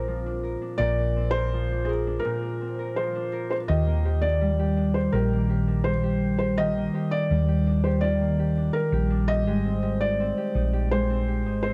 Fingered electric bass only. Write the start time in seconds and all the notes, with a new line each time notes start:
Already playing: A#1
0.79 A#1
3.70 D#2
5.13 A#1
7.31 D#2
8.92 A#1
9.46 G#1
10.55 A#1
11.45 G#1